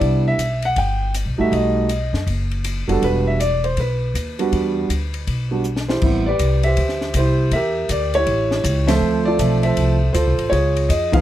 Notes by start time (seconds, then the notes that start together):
Already playing: G3 B3 D4 E4 D5
0.01 C2, kick, ride
0.28 E5
0.38 B1, hi-hat pedal, ride
0.62 F#5, ride
0.76 G1 G5, kick, ride
1.14 hi-hat pedal, ride
1.26 B1
1.38 A#1 G3 A3 D#4 F#4 E5
1.51 B1 D#5, kick, ride
1.89 hi-hat pedal, ride
2.13 F#2, snare
2.26 F#1, kick, ride
2.51 ride
2.64 hi-hat pedal, ride
2.88 F#1 G3 B3 D4 F#4 A4, ride
3.02 E1 B4, kick, ride
3.27 E5
3.40 D5, hi-hat pedal, ride
3.64 C5, ride
3.77 B1 B4, kick, ride
4.14 D#2, hi-hat pedal, ride
4.39 G3 B3 D4 F#4, ride
4.52 E2, kick, ride
4.89 D2, hi-hat pedal, ride
5.14 ride
5.27 B1, kick, ride
5.51 G3 B3 D4 F#4
5.64 hi-hat pedal
5.76 snare
5.88 E4 G4 C5, snare
6.01 A1 G3 B3 C4 E4, kick, crash
6.26 G4 B4 D5
6.39 C2, kick, hi-hat pedal, ride
6.63 G4 C5 E5, ride
6.77 D2, kick, ride
6.89 snare
7.01 snare
7.14 C2 C5, kick, hi-hat pedal, ride
7.18 E4 G4
7.51 E2 G4 A#4 E5, kick, ride
7.89 D2 D5, kick, hi-hat pedal, ride
8.14 E4 G4 C#5, ride
8.26 A1, kick, ride
8.51 snare
8.64 C#2, kick, hi-hat pedal, ride
8.87 F3 A3 C4 F4 A4 C5 E5, snare, ride
9.00 D2
9.25 F4 A4 D5
9.38 B1 F3 A3 C4 E5, kick, hi-hat pedal, ride
9.63 A4 C5 E5, ride
9.76 C2, kick, ride
10.13 D2 F4 A4 C5, kick, hi-hat pedal, ride
10.25 C2
10.39 ride
10.50 C#2 F4 G#4 C#5, kick, ride
10.77 ride
10.89 F2 D#5, kick, hi-hat pedal, ride
11.12 F3 G#3 B3 D#4 G#4 B4 F5, kick, ride